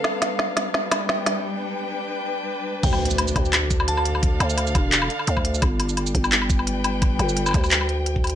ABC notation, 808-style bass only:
X:1
M:4/4
L:1/8
Q:"Swing 16ths" 1/4=172
K:Ddor
V:1 name="808-style bass" clef=bass
z8 | z8 | D,,3 D,,4- D,,- | D,, D,,2 E,,,2 z D,,2 |
G,,,3 G,,,4- G,,,- | G,,, G,,,2 D,,4- D,, |]